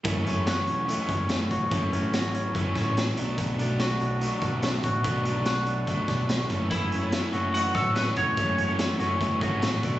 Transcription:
<<
  \new Staff \with { instrumentName = "Lead electric guitar" } { \time 4/4 \key fis \minor \tempo 4 = 144 r1 | r1 | r1 | r1 |
e'4. r8 fis'8 a'8 b'8 cis''8~ | cis''4 r2. | }
  \new Staff \with { instrumentName = "Clean electric guitar" } { \time 4/4 \key fis \minor fis,8 cis'8 fis'8 cis'8 a8 cis'8 a8 fis'8 | fis,8 cis'8 fis'8 cis'8 a8 cis'8 a8 b,8 | b,8 d'8 fis'8 d'8 a8 d'8 a8 fis'8 | b,8 d'8 fis'8 d'8 a8 d'8 a8 fis,8 |
fis,8 cis'8 a8 fis'8 a8 fis'8 a8 fis'8 | fis,8 cis'8 a8 fis'8 a8 fis'8 a8 b,8 | }
  \new Staff \with { instrumentName = "Overdriven electric guitar" } { \time 4/4 \key fis \minor <fis, cis e a cis'>8 <e a cis'>4. <cis e a cis'>2 | <fis, cis e a cis'>8 <e a cis'>4. <cis e a cis'>4. <b, fis a d'>8~ | <b, fis a d'>8 <fis a d'>4. <b, fis a d'>2 | <b, fis a d'>8 <fis a d'>4. <b, fis a d'>4. <fis, cis e a cis'>8 |
<cis e a cis'>8. <e a cis'>8. <cis e a cis'>4 <fis, cis e a cis'>8. <e a cis'>8. | <cis e a cis'>8. <e a cis'>8. <cis e a cis'>4 <fis, cis e a cis'>8. <e a cis'>16 <b, fis a d'>8 | }
  \new Staff \with { instrumentName = "Picked electric bass" } { \clef bass \time 4/4 \key fis \minor fis,,8 fis,,4 e,,8. r16 fis,,4 e,,8 | fis,,8. gis,,4~ gis,,16 fis,,8 a,,4 b,,8~ | b,,8 b,,4 b,,8. r16 b,,4 a,,8 | b,,8. b,,4~ b,,16 cis,8 b,,4 fis,,8 |
fis,,4~ fis,,16 r16 fis,,4 a,,4 e,,8 | fis,,4~ fis,,16 r16 fis,,4 gis,,8 a,,8 b,,8 | }
  \new DrumStaff \with { instrumentName = "Drums" } \drummode { \time 4/4 <hh bd>8 hh8 <hh sn>8 hh8 hh8 <hh bd>8 <hh sn>8 <hh bd>8 | <hh bd>8 hh8 <hh sn>8 hh8 <hh bd>8 <hh bd sn>8 <hh sn>8 hh8 | <hh bd>8 hh8 <hh sn>8 hh8 hh8 <hh bd>8 <hh sn>8 <hh bd>8 | <hh bd>8 hh8 <hh sn>8 hh8 <hh bd>8 <hh bd sn>8 <hh sn>8 <hh bd>8 |
<hh bd>8 hh8 <hh sn>8 hh8 hh8 <hh bd sn>8 <hh sn>8 <hh bd>8 | <hh bd>8 hh8 <hh sn>8 hh8 <hh bd>8 <hh bd>8 <hh sn>8 <hh bd>8 | }
>>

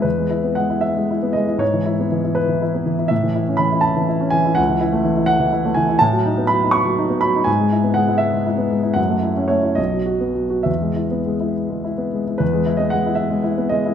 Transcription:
<<
  \new Staff \with { instrumentName = "Grand piano" } { \time 6/8 \key e \major \tempo 4. = 79 b'4 fis''8 e''4 dis''8 | cis''4. b'4. | e''4 b''8 a''4 gis''8 | fis''4. fis''4 gis''8 |
a''4 b''8 cis'''4 b''8 | gis''4 fis''8 e''8 r4 | fis''4 cis''8 dis''4. | e''4. r4. |
b'8. dis''16 fis''8 e''4 dis''8 | }
  \new Staff \with { instrumentName = "Grand piano" } { \time 6/8 \key e \major e,16 gis16 e'16 b16 gis16 e'8 gis16 e'16 b16 gis16 e'16 | gis,16 e16 e'16 b16 e16 e'8 e16 e'16 b16 e16 e'16 | a,16 e16 e'16 cis'16 e16 e'8 e16 e'16 cis'16 e16 e'16 | cis,16 e16 e'16 a16 e16 e'8 e16 e'16 a16 e16 e'16 |
a,16 fis16 dis'16 b16 fis16 dis'8 fis16 dis'16 b16 fis16 dis'16 | gis,16 gis16 e'16 b16 gis16 e'8 gis16 e'16 b16 gis16 e'16 | fis,16 a16 e'16 cis'16 a16 e'16 b,,16 fis16 fis'16 b16 fis16 fis'16 | e,16 gis16 e'16 b16 gis16 e'8 gis16 e'16 b16 gis16 e'16 |
e,16 gis16 e'16 b16 gis16 e'8 gis16 e'16 b16 gis16 e'16 | }
>>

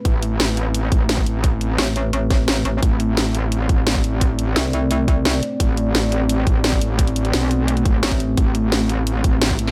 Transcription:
<<
  \new Staff \with { instrumentName = "Analog synth pad" } { \time 4/4 \key a \minor \tempo 4 = 173 << { b'1~ | b'1 | d''1~ | d''1~ |
d''1~ | d''1 | b'1 | } \\ { <a c'>1~ | <a c'>1~ | <a c'>1~ | <a c'>1~ |
<a c'>1~ | <a c'>1~ | <a c'>1 | } >> }
  \new Staff \with { instrumentName = "Wobble bass" } { \clef bass \time 4/4 \key a \minor a,,2~ a,,8 a,,4 a,,8~ | a,,4 r2. | a,,2~ a,,8 a,,4 a,,8~ | a,,4 r2. |
a,,2~ a,,8 a,,4 a,,8~ | a,,4 b,,4. a,,8 r4 | a,,2~ a,,8 a,,4 a,,8 | }
  \new Staff \with { instrumentName = "Wobble bass" } { \clef bass \time 4/4 \key a \minor r1 | r4 a,,4 a,,4. a,,8 | r1 | r4 c,2~ c,8 r8 |
r1 | r2. a,,4 | r1 | }
  \new DrumStaff \with { instrumentName = "Drums" } \drummode { \time 4/4 <hh bd>8 hh8 <hh sn>8 hh8 hh8 <hh bd>8 <hh sn>16 bd16 hh8 | <hh bd>8 hh8 <hh sn>8 hh8 hh8 <hh bd sn>8 <hh sn>8 hh8 | <hh bd>8 hh8 <hh sn>8 hh8 hh8 <hh bd>8 <hh sn>16 bd16 hh8 | <hh bd>8 hh8 <hh sn>8 hh8 hh8 <hh bd>8 <hh sn>8 hh8 |
<hh bd>8 hh8 <hh sn>8 hh8 hh8 <hh bd>8 <hh sn>16 bd16 hh8 | <hh bd>16 hh16 hh16 hh16 <hh sn>8 hh8 hh16 hh16 <hh bd>8 <hh sn>16 <hh bd>16 hh8 | <hh bd>8 hh8 <hh sn>8 hh8 hh8 <hh bd>8 <hh sn>16 bd16 hh16 sn16 | }
>>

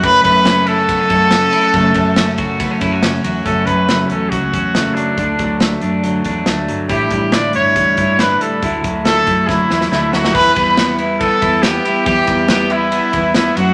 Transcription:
<<
  \new Staff \with { instrumentName = "Violin section" } { \time 4/4 \key e \dorian \tempo 4 = 140 b''8 b''4 a''2~ a''8~ | a''2. r4 | r1 | r1 |
r1 | r2. e''8 fis''8 | b''8 b''4 r8 a''4 g''4 | g''4 g''8 e''4. e''8 fis''8 | }
  \new Staff \with { instrumentName = "Trumpet" } { \time 4/4 \key e \dorian b'8 b'4 a'2~ a'8~ | a'2. r4 | a'8 b'8.~ b'32 b'32 a'8 fis'4. d'8~ | d'4. r2 r8 |
g'4 d''8 cis''4. b'8 a'8~ | a'8 r8 a'4 e'4 e'8 fis'8 | b'8 b'4 r8 a'4 g'4 | g'4 g'8 e'4. e'8 fis'8 | }
  \new Staff \with { instrumentName = "Clean electric guitar" } { \time 4/4 \key e \dorian fis,8 a8 cis'8 e'16 fis'16 b16 cis'16 fis'8 b16 cis'16 e'16 fis'16 | fis,8 a8 cis'8 fis'8 b16 cis'16 e'16 fis'16 cis'8 fis'8 | <fis, cis'>8 fis8 a8 cis'8 fis8 cis'8 a8 fis8 | <d d'>8 fis8 a8 d'8 fis8 d'8 a8 fis8 |
<a, e'>8 g8 d'8 e'8 g8 e'8 d'8 g8 | <d e'>8 fis8 a8 e'8 fis8 e'8 a8 fis8 | e8 g8 b8 e'8 b8 e'8 b8 e'8 | e8 g8 b8 e'8 b8 e'8 b8 fis8 | }
  \new Staff \with { instrumentName = "Steel-string acoustic guitar" } { \time 4/4 \key e \dorian <fis, cis fis a cis'>8 <fis a cis'>8 <cis fis a cis'>4. <fis a cis'>8 <cis fis a cis'>8 <fis a cis'>8 | <fis, cis fis a cis'>8 <fis a cis'>8 <cis fis a cis'>4. <fis a cis'>8 <cis fis a cis'>8 <fis a cis'>8 | <fis, cis fis a cis'>8 <fis a cis'>8 <fis, cis fis a cis'>8 <fis a cis'>8 <cis fis a cis'>8 <fis a cis'>8 <fis, cis fis a cis'>4 | <d fis a d'>8 <fis a d'>8 <d fis a d'>8 <fis a d'>8 <d fis a d'>8 <fis a d'>8 <d fis a d'>4 |
<a, d g d' e'>8 <g d' e'>8 <a, d g d' e'>8 <g d' e'>8 <d g d' e'>8 <g d' e'>8 <a, d g d' e'>4 | <d fis a e'>8 <fis a e'>8 <d fis a e'>8 <fis a e'>8 <d fis a e'>8 <fis a e'>8 <d fis a e'>4 | <e g b e'>8 <g b e'>8 <e g b e'>4. <g b e'>8 <e g b e'>8 <g b e'>8 | <e g b e'>8 <g b e'>8 <e g b e'>4. <g b e'>8 <e g b e'>8 <a cis' fis'>8 | }
  \new Staff \with { instrumentName = "Fingered electric bass" } { \clef bass \time 4/4 \key e \dorian fis,8 fis,4.~ fis,16 r16 fis,4 r8 | fis,8 fis,4.~ fis,16 r16 fis,4 e,8 | fis,8 fis,4 e,8 cis,8 e,4 r8 | d,8 d,4 fis,4 e,8 d,8 g,,8 |
a,,8 a,,4 g,,8 e,8 g,4 r8 | d,8 d,4 fis,4 e,8 d,8 d,8 | e,8 e,4.~ e,16 r16 e,4 r8 | e,8 e,4.~ e,16 r16 e,4 fis,8 | }
  \new DrumStaff \with { instrumentName = "Drums" } \drummode { \time 4/4 <bd cymr>8 <bd cymr>8 <cymr sn>8 cymr8 <bd cymr>8 <bd cymr>8 <cymr sn>8 cymr8 | <bd cymr>8 <bd cymr>8 <cymr sn>8 <bd cymr>8 <bd cymr>8 <bd cymr>8 <cymr sn>8 cymr8 | <hh bd>8 <hh bd>8 <hh sn>8 hh8 <hh bd>8 <hh bd>8 <hh sn>8 hh8 | <hh bd>8 <hh bd>8 <hh sn>8 hh8 hh8 <hh bd>8 <hh sn>8 hh8 |
<hh bd>8 <hh bd>8 <hh sn>8 hh8 <hh bd>8 <hh bd>8 <hh sn>8 hh8 | <hh bd>8 <hh bd>8 <hh sn>8 <hh bd>8 <bd sn>8 sn16 sn16 sn8 sn16 sn16 | <cymc bd>8 <bd cymr>8 <cymr sn>8 cymr8 <bd cymr>8 <bd cymr>8 <cymr sn>8 cymr8 | <bd cymr>8 <bd cymr>8 <cymr sn>8 cymr8 cymr8 <bd cymr>8 <cymr sn>8 cymr8 | }
>>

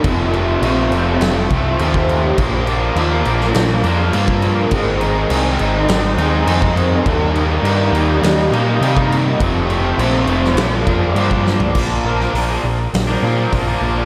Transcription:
<<
  \new Staff \with { instrumentName = "Overdriven electric guitar" } { \time 4/4 \key bes \major \tempo 4 = 102 <f, c f a c'>8 <f a c'>8 <c f a c'>8 <f a c'>4 <f a c'>8 <c f a c'>4 | <bes, f bes d'>8 <f bes d'>8 <bes, f bes d'>8 <f bes d'>4 <f bes d'>8 <bes, f bes d'>4 | <aes, ees aes c' ees'>8 <aes c' ees'>8 <ees aes c' ees'>8 <aes c' ees'>4 <aes c' ees'>8 <ees aes c' ees'>4 | <ees g bes ees'>8 <g bes ees'>8 <ees g bes ees'>8 <g bes ees'>4 <g bes ees'>8 <ees g bes ees'>4 |
<f, c f a c'>8 <f a c'>8 <c f a c'>8 <f a c'>8 <bes, f bes d'>8 <f bes d'>8 <bes, f bes d'>4 | <bes, f bes d'>8 <bes, f bes d'>16 <f bes d'>16 <bes, f bes d'>16 <f bes d'>8. r16 <f bes d'>16 <bes, f bes d'>8 <bes, f bes d'>16 <f bes d'>16 <bes, f bes d'>16 <f bes d'>16 | }
  \new Staff \with { instrumentName = "Picked electric bass" } { \clef bass \time 4/4 \key bes \major f,,4 bes,,8 f,,8 f,,8 c,8 ees,4 | bes,,4 ees,8 bes,,8 bes,,8 f,8 g,4 | aes,,4 c,8 aes,,8 aes,,8 ees,8 f,4 | ees,4 g,8 ees,8 ees,8 bes,8 c4 |
f,,4 bes,,8 f,,8 bes,,8 f,8 g,4 | bes,,8 bes,,8 bes,,8 bes,,8 bes,,8 bes,8 bes,,8 bes,,8 | }
  \new DrumStaff \with { instrumentName = "Drums" } \drummode { \time 4/4 <cymc bd>8 cymc8 cymc8 cymc8 <cymc sn>8 <cymc bd>8 cymc16 bd16 cymc8 | <cymc bd>8 cymc8 cymc8 cymc16 sn16 <cymc sn>8 cymc8 cymc16 bd16 cymc8 | <cymc bd>8 cymc8 cymc8 cymc8 <cymc sn>8 cymc8 cymc16 bd16 cymc8 | <cymc bd>8 cymc8 cymc8 cymc8 <cymc sn>8 cymc8 cymc16 bd16 cymc8 |
<cymc bd>8 cymc8 cymc8 cymc16 sn16 <cymc sn>8 <cymc bd>8 cymc16 bd16 sn16 tomfh16 | <cymc bd>8. sn16 hho4 <hho sn>4 <hho bd>4 | }
>>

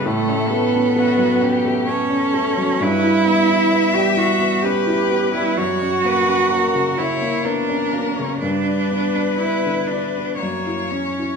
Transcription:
<<
  \new Staff \with { instrumentName = "Violin" } { \time 3/4 \key fis \phrygian \tempo 4 = 64 a'4 fis'8 g'8 a'4 | b'8 e''4. b'4 | cis''8 b'8 ais'8 cis''8 ais'4 | b'2 cis''4 | }
  \new Staff \with { instrumentName = "Cello" } { \time 3/4 \key fis \phrygian a8 b4. cis'4 | e'4~ e'16 g'16 fis'8 g'8. e'16 | fis'4. e'8 d'8. cis'16 | d'4 e'8 d'8 ais8 cis'8 | }
  \new Staff \with { instrumentName = "Grand piano" } { \time 3/4 \key fis \phrygian a,16 cis'16 a16 cis'16 a16 fis16 cis'16 a16 b16 cis'16 a16 fis16 | g,16 e'16 b16 e'16 b16 g16 e'16 b16 cis'16 e'16 b16 g16 | fis,16 cis'16 ais16 cis'16 ais16 cis16 cis'16 ais16 b16 cis'16 ais16 cis16 | g,16 d'16 b16 d'16 b16 d16 d'16 b16 fis,16 e'16 cis'16 e'16 | }
>>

